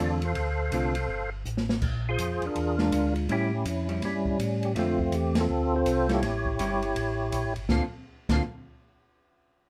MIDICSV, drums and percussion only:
0, 0, Header, 1, 2, 480
1, 0, Start_track
1, 0, Key_signature, -1, "minor"
1, 0, Tempo, 366748
1, 463, Time_signature, 4, 2, 24, 8
1, 12689, End_track
2, 0, Start_track
2, 0, Title_t, "Drums"
2, 285, Note_on_c, 9, 51, 50
2, 416, Note_off_c, 9, 51, 0
2, 460, Note_on_c, 9, 36, 25
2, 460, Note_on_c, 9, 51, 62
2, 591, Note_off_c, 9, 36, 0
2, 591, Note_off_c, 9, 51, 0
2, 939, Note_on_c, 9, 36, 19
2, 940, Note_on_c, 9, 44, 56
2, 940, Note_on_c, 9, 51, 71
2, 1070, Note_off_c, 9, 36, 0
2, 1071, Note_off_c, 9, 44, 0
2, 1071, Note_off_c, 9, 51, 0
2, 1241, Note_on_c, 9, 51, 64
2, 1372, Note_off_c, 9, 51, 0
2, 1420, Note_on_c, 9, 36, 27
2, 1551, Note_off_c, 9, 36, 0
2, 1902, Note_on_c, 9, 44, 63
2, 2033, Note_off_c, 9, 44, 0
2, 2059, Note_on_c, 9, 38, 59
2, 2190, Note_off_c, 9, 38, 0
2, 2217, Note_on_c, 9, 38, 79
2, 2348, Note_off_c, 9, 38, 0
2, 2377, Note_on_c, 9, 49, 73
2, 2381, Note_on_c, 9, 36, 75
2, 2508, Note_off_c, 9, 49, 0
2, 2512, Note_off_c, 9, 36, 0
2, 2860, Note_on_c, 9, 44, 64
2, 2860, Note_on_c, 9, 51, 73
2, 2862, Note_on_c, 9, 36, 19
2, 2990, Note_off_c, 9, 44, 0
2, 2990, Note_off_c, 9, 51, 0
2, 2993, Note_off_c, 9, 36, 0
2, 3165, Note_on_c, 9, 51, 45
2, 3296, Note_off_c, 9, 51, 0
2, 3343, Note_on_c, 9, 36, 22
2, 3345, Note_on_c, 9, 51, 63
2, 3474, Note_off_c, 9, 36, 0
2, 3476, Note_off_c, 9, 51, 0
2, 3645, Note_on_c, 9, 38, 59
2, 3776, Note_off_c, 9, 38, 0
2, 3824, Note_on_c, 9, 36, 26
2, 3825, Note_on_c, 9, 44, 55
2, 3825, Note_on_c, 9, 51, 75
2, 3955, Note_off_c, 9, 36, 0
2, 3956, Note_off_c, 9, 44, 0
2, 3956, Note_off_c, 9, 51, 0
2, 4130, Note_on_c, 9, 51, 48
2, 4261, Note_off_c, 9, 51, 0
2, 4304, Note_on_c, 9, 36, 26
2, 4308, Note_on_c, 9, 51, 63
2, 4435, Note_off_c, 9, 36, 0
2, 4439, Note_off_c, 9, 51, 0
2, 4783, Note_on_c, 9, 36, 25
2, 4783, Note_on_c, 9, 44, 50
2, 4783, Note_on_c, 9, 51, 73
2, 4914, Note_off_c, 9, 36, 0
2, 4914, Note_off_c, 9, 44, 0
2, 4914, Note_off_c, 9, 51, 0
2, 5089, Note_on_c, 9, 51, 44
2, 5219, Note_off_c, 9, 51, 0
2, 5262, Note_on_c, 9, 38, 40
2, 5263, Note_on_c, 9, 51, 61
2, 5264, Note_on_c, 9, 36, 21
2, 5393, Note_off_c, 9, 38, 0
2, 5394, Note_off_c, 9, 51, 0
2, 5395, Note_off_c, 9, 36, 0
2, 5569, Note_on_c, 9, 36, 59
2, 5700, Note_off_c, 9, 36, 0
2, 5746, Note_on_c, 9, 36, 24
2, 5753, Note_on_c, 9, 44, 54
2, 5753, Note_on_c, 9, 51, 74
2, 5877, Note_off_c, 9, 36, 0
2, 5884, Note_off_c, 9, 44, 0
2, 5884, Note_off_c, 9, 51, 0
2, 6056, Note_on_c, 9, 51, 47
2, 6187, Note_off_c, 9, 51, 0
2, 6225, Note_on_c, 9, 36, 25
2, 6226, Note_on_c, 9, 38, 37
2, 6227, Note_on_c, 9, 51, 64
2, 6355, Note_off_c, 9, 36, 0
2, 6357, Note_off_c, 9, 38, 0
2, 6358, Note_off_c, 9, 51, 0
2, 6528, Note_on_c, 9, 36, 57
2, 6659, Note_off_c, 9, 36, 0
2, 6703, Note_on_c, 9, 36, 19
2, 6703, Note_on_c, 9, 44, 59
2, 6703, Note_on_c, 9, 51, 66
2, 6834, Note_off_c, 9, 36, 0
2, 6834, Note_off_c, 9, 44, 0
2, 6834, Note_off_c, 9, 51, 0
2, 7003, Note_on_c, 9, 38, 80
2, 7005, Note_on_c, 9, 51, 62
2, 7134, Note_off_c, 9, 38, 0
2, 7136, Note_off_c, 9, 51, 0
2, 7665, Note_on_c, 9, 36, 20
2, 7668, Note_on_c, 9, 44, 55
2, 7668, Note_on_c, 9, 51, 72
2, 7796, Note_off_c, 9, 36, 0
2, 7799, Note_off_c, 9, 44, 0
2, 7799, Note_off_c, 9, 51, 0
2, 7973, Note_on_c, 9, 38, 55
2, 7974, Note_on_c, 9, 51, 47
2, 8104, Note_off_c, 9, 38, 0
2, 8105, Note_off_c, 9, 51, 0
2, 8147, Note_on_c, 9, 36, 24
2, 8147, Note_on_c, 9, 38, 41
2, 8148, Note_on_c, 9, 51, 64
2, 8278, Note_off_c, 9, 36, 0
2, 8278, Note_off_c, 9, 38, 0
2, 8279, Note_off_c, 9, 51, 0
2, 8452, Note_on_c, 9, 36, 57
2, 8583, Note_off_c, 9, 36, 0
2, 8626, Note_on_c, 9, 44, 57
2, 8626, Note_on_c, 9, 51, 73
2, 8627, Note_on_c, 9, 36, 23
2, 8757, Note_off_c, 9, 44, 0
2, 8757, Note_off_c, 9, 51, 0
2, 8758, Note_off_c, 9, 36, 0
2, 8931, Note_on_c, 9, 51, 49
2, 9062, Note_off_c, 9, 51, 0
2, 9108, Note_on_c, 9, 36, 21
2, 9108, Note_on_c, 9, 51, 72
2, 9239, Note_off_c, 9, 36, 0
2, 9239, Note_off_c, 9, 51, 0
2, 9584, Note_on_c, 9, 44, 51
2, 9584, Note_on_c, 9, 51, 75
2, 9587, Note_on_c, 9, 36, 21
2, 9715, Note_off_c, 9, 44, 0
2, 9715, Note_off_c, 9, 51, 0
2, 9718, Note_off_c, 9, 36, 0
2, 9892, Note_on_c, 9, 51, 45
2, 10023, Note_off_c, 9, 51, 0
2, 10063, Note_on_c, 9, 38, 80
2, 10067, Note_on_c, 9, 36, 92
2, 10194, Note_off_c, 9, 38, 0
2, 10198, Note_off_c, 9, 36, 0
2, 10851, Note_on_c, 9, 36, 88
2, 10855, Note_on_c, 9, 38, 77
2, 10855, Note_on_c, 9, 49, 75
2, 10982, Note_off_c, 9, 36, 0
2, 10986, Note_off_c, 9, 38, 0
2, 10986, Note_off_c, 9, 49, 0
2, 12689, End_track
0, 0, End_of_file